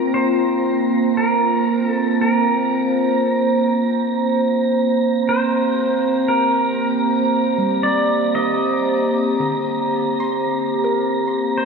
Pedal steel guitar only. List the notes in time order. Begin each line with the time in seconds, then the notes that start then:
Already playing: A#4
0.14 C5
1.17 A#4
1.87 A4
2.21 A#4
5.29 C5
6.28 A#4
7.83 D5
8.35 D#5
11.58 C5